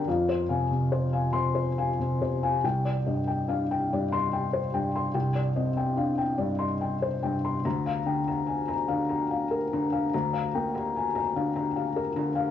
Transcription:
<<
  \new Staff \with { instrumentName = "Felt piano" } { \time 6/8 \key c \minor \tempo 4. = 48 << { r4. c'''8 r4 | r4. r16 c'''8 r8. | r2. | bes''8 r2 r8 |
r2. | } \\ { f''16 c''16 <f'' aes''>16 c16 c''16 <f'' aes''>16 r16 c''16 <f'' aes''>16 c16 c''16 <f'' aes''>16 | g''16 d''16 ees''16 g''16 f''16 g''16 d''8 g''16 c''16 g''16 c'''16 | g''16 d''16 ees''16 g''16 f''16 g''16 d''16 c'''16 g''16 c''16 g''16 c'''16 | r16 f''16 g''16 bes''16 aes''16 bes''16 f''16 bes''16 f''16 bes'16 bes''16 f''16 |
bes''16 f''16 g''16 bes''16 aes''16 bes''16 f''16 bes''16 f''16 bes'16 bes''16 f''16 | } >> }
  \new Staff \with { instrumentName = "Felt piano" } { \clef bass \time 6/8 \key c \minor f,8 c4 c4 c8 | c,8 g,8 d'8 g,4 g,8 | c,8 c'8 d'8 g,4 g,8 | d,8 d4 d4 d8 |
d,8 bes4 d4 d8 | }
>>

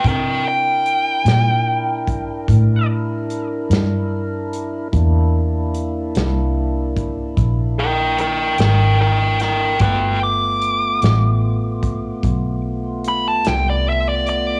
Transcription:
<<
  \new Staff \with { instrumentName = "Lead electric guitar" } { \time 12/8 \key c \major \tempo 4. = 49 <bes' g''>8 g''2. r2 r8 | r2. r8 <bes' g''>8 <bes' g''>8 <bes' g''>8 <bes' g''>8 <bes' g''>8 | <b' g''>8 d'''2. r8 b''16 a''16 g''16 d''16 e''16 d''16 d''8 | }
  \new Staff \with { instrumentName = "Tonewheel organ" } { \time 12/8 \key c \major <d' e' bes'>1. | <bes d' e'>1. | <a b f'>1. | }
  \new Staff \with { instrumentName = "Fingered electric bass" } { \clef bass \time 12/8 \key c \major c4. bes,4. a,4. g,4. | e,4. c,4. bes,,4. aes,,4. | g,,4. a,,4. b,,4. c,4. | }
  \new DrumStaff \with { instrumentName = "Drums" } \drummode { \time 12/8 <hh bd>4 hh8 <hh sn>4 <hh bd>8 <hh bd>4 hh8 <hh sn>4 hh8 | <hh bd>4 hh8 <hh sn>4 <hh bd>8 <hh bd>4 hh8 <hh sn>4 <hh sn>8 | <hh bd>4 hh8 <hh sn>4 <hh bd>8 <hh bd>4 hh8 <hh sn>4 hh8 | }
>>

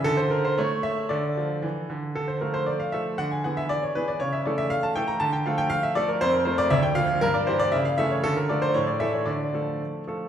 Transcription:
<<
  \new Staff \with { instrumentName = "Grand piano" } { \time 2/4 \key d \minor \tempo 4 = 117 << { a'16 c''16 bes'16 c''16 cis''8 e''8 | d''4 r4 | a'16 c''16 bes'16 c''16 d''16 f''16 e''8 | fis''16 gis''16 fis''16 e''16 d''16 cis''16 b'16 d''16 |
cis''16 e''16 d''16 e''16 f''16 a''16 g''16 bes''16 | a''16 g''16 f''16 g''16 f''16 e''16 d''16 bes'16 | c''16 bes'16 c''16 d''16 e''16 g''16 f''8 | bes'16 d''16 c''16 d''16 e''16 f''16 e''16 cis''16 |
a'16 bes'16 d''16 c''16 cis''16 d''16 e''16 cis''16 | d''4 r4 | } \\ { r2 | a'2 | r2 | r2 |
r2 | r2 | r2 | r2 |
r2 | r2 | } >> }
  \new Staff \with { instrumentName = "Grand piano" } { \time 2/4 \key d \minor d4 a4 | d8 f8 e8 d8 | d8 <f a a'>4 <f a a'>8 | d8 <e b gis'>4 <e b gis'>8 |
cis8 <e a a'>4 <e a a'>8 | d8 <f a a'>4 <f a a'>8 | f,8 <f a f'>8 d,8 <f bes f'>8 | g,8 <e bes g'>8 cis8 <e a a'>8 |
d8 <f a a'>8 a,8 <e a a'>8 | d8 <f a a'>4 <f a a'>8 | }
>>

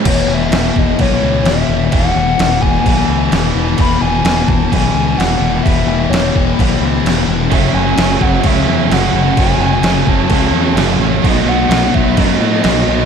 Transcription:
<<
  \new Staff \with { instrumentName = "Soft synth lead" } { \time 4/4 \key e \major \tempo 4 = 129 cis''8 e''4 dis''8 cis''4 e''4 | fis''4. gis''4. r4 | b''8 gis''4 a''8 gis''4 fis''4 | e''4 cis''4 r2 |
e''8 gis''4 fis''8 e''4 fis''4 | gis''4. a''4. r4 | dis''8 fis''4 e''8 dis''2 | }
  \new Staff \with { instrumentName = "Overdriven electric guitar" } { \time 4/4 \key e \major r1 | r1 | r1 | r1 |
<fis, cis fis a cis'>8 <fis a cis'>8 <fis, cis fis a cis'>8 <fis a cis'>8 <cis fis a cis'>8 <fis a cis'>8 <fis, cis fis a cis'>8 <fis a cis'>8 | <fis, cis fis a cis'>8 <fis a cis'>8 <fis, cis fis a cis'>8 <fis a cis'>8 <cis fis a cis'>8 <fis a cis'>8 <fis, cis fis a cis'>8 <fis a cis'>8 | <b, fis a dis'>8 <fis a dis'>8 <b, fis a dis'>8 <fis a dis'>8 <b, fis a dis'>8 <fis a dis'>8 <b, fis a dis'>8 <fis a dis'>8 | }
  \new Staff \with { instrumentName = "Distorted electric guitar" } { \clef bass \time 4/4 \key e \major <e, b, e>8 <b, e>8 <e, b, e>8 <b, e>4. <e, b, e>8 <b, e>8 | <e, b, e>8 <b, e>8 <e, b, e>8 <b, e>4. <e, b, e>8 <b, e>8 | <e, b, e>8 <b, e>8 <e, b, e>8 <b, e>4. <e, b, e>8 <b, e>8 | <e, b, e>8 <b, e>8 <e, b, e>8 <b, e>4. <e, b, e>8 <b, e>8 |
<fis, cis fis>8 <cis fis>8 <fis, cis fis>8 <cis fis>4. <fis, cis fis>8 <cis fis>8 | <fis, cis fis>8 <cis fis>8 <fis, cis fis>8 <cis fis>4. <fis, cis fis>8 <cis fis>8 | <b, fis b>8 <fis b>8 <b, fis b>8 <fis b>4. <b, fis b>8 <fis b>8 | }
  \new Staff \with { instrumentName = "Distorted electric guitar" } { \clef bass \time 4/4 \key e \major <e, b, e>2 <e, b, e>2 | <e, b, e>2 <e, b, e>2 | <e, b, e>2 <e, b, e>2 | <e, b, e>2 <e, b, e>2 |
<fis, cis fis>2 <fis, cis fis>2 | <fis, cis fis>2 <fis, cis fis>2 | <b, fis b>2 <b, fis b>2 | }
  \new Staff \with { instrumentName = "Fingered electric bass" } { \clef bass \time 4/4 \key e \major e,,8 e,,8 e,,8 e,,8 b,,8 cis,8 e,,8 e,,8 | e,,8 e,,8 e,,8 e,,8 b,,8 cis,8 e,,8 e,,8 | e,,8 e,,8 e,,8 e,,8 b,,8 cis,8 e,,8 e,,8 | e,,8 e,,8 e,,8 e,,8 b,,8 cis,8 e,,8 e,,8 |
fis,,8 fis,,8 fis,,8 fis,,8 cis,8 e,8 fis,,8 fis,,8 | fis,,8 fis,,8 fis,,8 fis,,8 cis,8 e,8 fis,,8 a,,8 | b,,8 b,,8 b,,8 b,,8 fis,8 a,8 b,,8 b,,8 | }
  \new DrumStaff \with { instrumentName = "Drums" } \drummode { \time 4/4 <cymc bd>4 <cymc sn>8 bd8 <cymc bd>4 <cymc sn>4 | <cymc bd>4 <cymc sn>8 bd8 <cymc bd>4 <cymc sn>4 | <cymc bd>4 <cymc sn>8 bd8 <cymc bd>4 <cymc sn>4 | <cymc bd>4 <cymc sn>8 bd8 <cymc bd>4 <cymc sn>4 |
<cymc bd>4 <cymc sn>8 bd8 <cymc bd>4 <cymc sn>4 | <cymc bd>4 <cymc sn>8 bd8 <cymc bd>4 <cymc sn>4 | <cymc bd>4 <cymc sn>8 bd8 <cymc bd>4 <cymc sn>4 | }
>>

